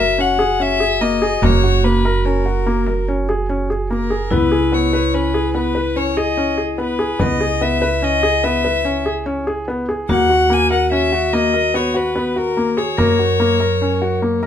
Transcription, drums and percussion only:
0, 0, Header, 1, 2, 480
1, 0, Start_track
1, 0, Tempo, 412655
1, 1655, Time_signature, 7, 2, 24, 8
1, 16827, End_track
2, 0, Start_track
2, 0, Title_t, "Frame drum"
2, 1662, Note_on_c, 9, 64, 75
2, 1778, Note_off_c, 9, 64, 0
2, 3101, Note_on_c, 9, 64, 16
2, 3218, Note_off_c, 9, 64, 0
2, 3333, Note_on_c, 9, 64, 42
2, 3449, Note_off_c, 9, 64, 0
2, 4300, Note_on_c, 9, 64, 17
2, 4417, Note_off_c, 9, 64, 0
2, 5022, Note_on_c, 9, 64, 49
2, 5138, Note_off_c, 9, 64, 0
2, 6696, Note_on_c, 9, 64, 33
2, 6813, Note_off_c, 9, 64, 0
2, 7416, Note_on_c, 9, 64, 18
2, 7532, Note_off_c, 9, 64, 0
2, 8369, Note_on_c, 9, 64, 56
2, 8485, Note_off_c, 9, 64, 0
2, 10057, Note_on_c, 9, 64, 41
2, 10174, Note_off_c, 9, 64, 0
2, 10783, Note_on_c, 9, 64, 16
2, 10899, Note_off_c, 9, 64, 0
2, 11737, Note_on_c, 9, 64, 56
2, 11853, Note_off_c, 9, 64, 0
2, 13419, Note_on_c, 9, 64, 34
2, 13536, Note_off_c, 9, 64, 0
2, 14143, Note_on_c, 9, 64, 16
2, 14259, Note_off_c, 9, 64, 0
2, 15101, Note_on_c, 9, 64, 54
2, 15218, Note_off_c, 9, 64, 0
2, 16068, Note_on_c, 9, 64, 16
2, 16184, Note_off_c, 9, 64, 0
2, 16787, Note_on_c, 9, 64, 41
2, 16827, Note_off_c, 9, 64, 0
2, 16827, End_track
0, 0, End_of_file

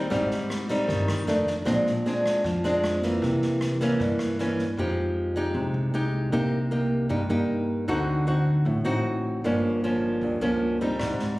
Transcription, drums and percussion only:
0, 0, Header, 1, 2, 480
1, 0, Start_track
1, 0, Tempo, 388601
1, 140, Time_signature, 4, 2, 24, 8
1, 14071, End_track
2, 0, Start_track
2, 0, Title_t, "Drums"
2, 136, Note_on_c, 9, 38, 24
2, 139, Note_on_c, 9, 36, 58
2, 260, Note_off_c, 9, 38, 0
2, 263, Note_off_c, 9, 36, 0
2, 381, Note_on_c, 9, 38, 23
2, 505, Note_off_c, 9, 38, 0
2, 619, Note_on_c, 9, 37, 58
2, 619, Note_on_c, 9, 38, 24
2, 743, Note_off_c, 9, 37, 0
2, 743, Note_off_c, 9, 38, 0
2, 859, Note_on_c, 9, 36, 23
2, 861, Note_on_c, 9, 38, 23
2, 982, Note_off_c, 9, 36, 0
2, 985, Note_off_c, 9, 38, 0
2, 1096, Note_on_c, 9, 38, 23
2, 1098, Note_on_c, 9, 36, 60
2, 1220, Note_off_c, 9, 38, 0
2, 1222, Note_off_c, 9, 36, 0
2, 1339, Note_on_c, 9, 37, 62
2, 1339, Note_on_c, 9, 38, 22
2, 1462, Note_off_c, 9, 37, 0
2, 1462, Note_off_c, 9, 38, 0
2, 1578, Note_on_c, 9, 38, 25
2, 1702, Note_off_c, 9, 38, 0
2, 1815, Note_on_c, 9, 38, 23
2, 1818, Note_on_c, 9, 36, 24
2, 1939, Note_off_c, 9, 38, 0
2, 1942, Note_off_c, 9, 36, 0
2, 2057, Note_on_c, 9, 37, 54
2, 2057, Note_on_c, 9, 38, 23
2, 2060, Note_on_c, 9, 36, 60
2, 2180, Note_off_c, 9, 37, 0
2, 2180, Note_off_c, 9, 38, 0
2, 2183, Note_off_c, 9, 36, 0
2, 2304, Note_on_c, 9, 38, 25
2, 2427, Note_off_c, 9, 38, 0
2, 2548, Note_on_c, 9, 38, 26
2, 2672, Note_off_c, 9, 38, 0
2, 2781, Note_on_c, 9, 36, 23
2, 2787, Note_on_c, 9, 37, 58
2, 2787, Note_on_c, 9, 38, 23
2, 2905, Note_off_c, 9, 36, 0
2, 2911, Note_off_c, 9, 37, 0
2, 2911, Note_off_c, 9, 38, 0
2, 3018, Note_on_c, 9, 38, 23
2, 3019, Note_on_c, 9, 36, 56
2, 3141, Note_off_c, 9, 38, 0
2, 3143, Note_off_c, 9, 36, 0
2, 3262, Note_on_c, 9, 38, 25
2, 3385, Note_off_c, 9, 38, 0
2, 3505, Note_on_c, 9, 37, 65
2, 3505, Note_on_c, 9, 38, 25
2, 3628, Note_off_c, 9, 37, 0
2, 3628, Note_off_c, 9, 38, 0
2, 3741, Note_on_c, 9, 36, 25
2, 3745, Note_on_c, 9, 38, 25
2, 3864, Note_off_c, 9, 36, 0
2, 3868, Note_off_c, 9, 38, 0
2, 3981, Note_on_c, 9, 36, 55
2, 3981, Note_on_c, 9, 38, 21
2, 4104, Note_off_c, 9, 36, 0
2, 4104, Note_off_c, 9, 38, 0
2, 4223, Note_on_c, 9, 38, 24
2, 4347, Note_off_c, 9, 38, 0
2, 4459, Note_on_c, 9, 37, 59
2, 4459, Note_on_c, 9, 38, 24
2, 4582, Note_off_c, 9, 37, 0
2, 4582, Note_off_c, 9, 38, 0
2, 4700, Note_on_c, 9, 36, 23
2, 4706, Note_on_c, 9, 38, 23
2, 4824, Note_off_c, 9, 36, 0
2, 4830, Note_off_c, 9, 38, 0
2, 4940, Note_on_c, 9, 36, 58
2, 4940, Note_on_c, 9, 38, 23
2, 5063, Note_off_c, 9, 36, 0
2, 5064, Note_off_c, 9, 38, 0
2, 5178, Note_on_c, 9, 37, 63
2, 5178, Note_on_c, 9, 38, 23
2, 5302, Note_off_c, 9, 37, 0
2, 5302, Note_off_c, 9, 38, 0
2, 5424, Note_on_c, 9, 38, 26
2, 5548, Note_off_c, 9, 38, 0
2, 5659, Note_on_c, 9, 36, 23
2, 5666, Note_on_c, 9, 38, 22
2, 5782, Note_off_c, 9, 36, 0
2, 5790, Note_off_c, 9, 38, 0
2, 13581, Note_on_c, 9, 37, 62
2, 13581, Note_on_c, 9, 38, 24
2, 13584, Note_on_c, 9, 36, 59
2, 13705, Note_off_c, 9, 37, 0
2, 13705, Note_off_c, 9, 38, 0
2, 13708, Note_off_c, 9, 36, 0
2, 13825, Note_on_c, 9, 38, 21
2, 13949, Note_off_c, 9, 38, 0
2, 14071, End_track
0, 0, End_of_file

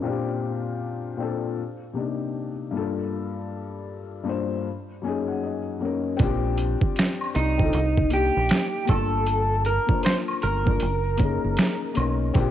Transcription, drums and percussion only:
0, 0, Header, 1, 2, 480
1, 0, Start_track
1, 0, Key_signature, -2, "major"
1, 0, Tempo, 769231
1, 27, Time_signature, 4, 2, 24, 8
1, 7805, End_track
2, 0, Start_track
2, 0, Title_t, "Drums"
2, 3865, Note_on_c, 9, 42, 85
2, 3867, Note_on_c, 9, 82, 76
2, 3868, Note_on_c, 9, 36, 119
2, 3927, Note_off_c, 9, 42, 0
2, 3930, Note_off_c, 9, 36, 0
2, 3930, Note_off_c, 9, 82, 0
2, 4104, Note_on_c, 9, 42, 65
2, 4107, Note_on_c, 9, 82, 51
2, 4167, Note_off_c, 9, 42, 0
2, 4170, Note_off_c, 9, 82, 0
2, 4252, Note_on_c, 9, 36, 93
2, 4315, Note_off_c, 9, 36, 0
2, 4343, Note_on_c, 9, 42, 71
2, 4343, Note_on_c, 9, 82, 75
2, 4361, Note_on_c, 9, 26, 95
2, 4364, Note_on_c, 9, 38, 119
2, 4405, Note_off_c, 9, 42, 0
2, 4405, Note_off_c, 9, 82, 0
2, 4424, Note_off_c, 9, 26, 0
2, 4426, Note_off_c, 9, 38, 0
2, 4499, Note_on_c, 9, 76, 68
2, 4562, Note_off_c, 9, 76, 0
2, 4584, Note_on_c, 9, 82, 49
2, 4586, Note_on_c, 9, 42, 72
2, 4646, Note_off_c, 9, 82, 0
2, 4649, Note_off_c, 9, 42, 0
2, 4739, Note_on_c, 9, 36, 92
2, 4801, Note_off_c, 9, 36, 0
2, 4823, Note_on_c, 9, 42, 99
2, 4824, Note_on_c, 9, 82, 69
2, 4885, Note_off_c, 9, 42, 0
2, 4886, Note_off_c, 9, 82, 0
2, 4976, Note_on_c, 9, 36, 84
2, 5039, Note_off_c, 9, 36, 0
2, 5056, Note_on_c, 9, 42, 66
2, 5061, Note_on_c, 9, 82, 50
2, 5119, Note_off_c, 9, 42, 0
2, 5124, Note_off_c, 9, 82, 0
2, 5299, Note_on_c, 9, 42, 94
2, 5302, Note_on_c, 9, 82, 70
2, 5309, Note_on_c, 9, 26, 90
2, 5312, Note_on_c, 9, 38, 116
2, 5361, Note_off_c, 9, 42, 0
2, 5364, Note_off_c, 9, 82, 0
2, 5372, Note_off_c, 9, 26, 0
2, 5374, Note_off_c, 9, 38, 0
2, 5537, Note_on_c, 9, 42, 70
2, 5546, Note_on_c, 9, 76, 58
2, 5546, Note_on_c, 9, 82, 45
2, 5547, Note_on_c, 9, 36, 108
2, 5599, Note_off_c, 9, 42, 0
2, 5608, Note_off_c, 9, 76, 0
2, 5608, Note_off_c, 9, 82, 0
2, 5609, Note_off_c, 9, 36, 0
2, 5781, Note_on_c, 9, 42, 77
2, 5785, Note_on_c, 9, 82, 72
2, 5844, Note_off_c, 9, 42, 0
2, 5848, Note_off_c, 9, 82, 0
2, 6020, Note_on_c, 9, 42, 61
2, 6026, Note_on_c, 9, 82, 52
2, 6082, Note_off_c, 9, 42, 0
2, 6088, Note_off_c, 9, 82, 0
2, 6170, Note_on_c, 9, 36, 94
2, 6232, Note_off_c, 9, 36, 0
2, 6259, Note_on_c, 9, 42, 70
2, 6260, Note_on_c, 9, 82, 76
2, 6277, Note_on_c, 9, 26, 90
2, 6280, Note_on_c, 9, 38, 115
2, 6321, Note_off_c, 9, 42, 0
2, 6322, Note_off_c, 9, 82, 0
2, 6339, Note_off_c, 9, 26, 0
2, 6342, Note_off_c, 9, 38, 0
2, 6416, Note_on_c, 9, 76, 68
2, 6478, Note_off_c, 9, 76, 0
2, 6500, Note_on_c, 9, 82, 52
2, 6503, Note_on_c, 9, 42, 69
2, 6562, Note_off_c, 9, 82, 0
2, 6565, Note_off_c, 9, 42, 0
2, 6657, Note_on_c, 9, 36, 94
2, 6719, Note_off_c, 9, 36, 0
2, 6738, Note_on_c, 9, 42, 104
2, 6743, Note_on_c, 9, 82, 70
2, 6800, Note_off_c, 9, 42, 0
2, 6805, Note_off_c, 9, 82, 0
2, 6974, Note_on_c, 9, 42, 65
2, 6985, Note_on_c, 9, 82, 49
2, 6986, Note_on_c, 9, 36, 94
2, 7036, Note_off_c, 9, 42, 0
2, 7048, Note_off_c, 9, 82, 0
2, 7049, Note_off_c, 9, 36, 0
2, 7219, Note_on_c, 9, 42, 87
2, 7224, Note_on_c, 9, 82, 66
2, 7230, Note_on_c, 9, 26, 93
2, 7233, Note_on_c, 9, 38, 116
2, 7282, Note_off_c, 9, 42, 0
2, 7287, Note_off_c, 9, 82, 0
2, 7293, Note_off_c, 9, 26, 0
2, 7295, Note_off_c, 9, 38, 0
2, 7457, Note_on_c, 9, 42, 63
2, 7469, Note_on_c, 9, 76, 62
2, 7469, Note_on_c, 9, 82, 43
2, 7520, Note_off_c, 9, 42, 0
2, 7532, Note_off_c, 9, 76, 0
2, 7532, Note_off_c, 9, 82, 0
2, 7703, Note_on_c, 9, 42, 83
2, 7707, Note_on_c, 9, 36, 112
2, 7707, Note_on_c, 9, 82, 72
2, 7766, Note_off_c, 9, 42, 0
2, 7769, Note_off_c, 9, 36, 0
2, 7769, Note_off_c, 9, 82, 0
2, 7805, End_track
0, 0, End_of_file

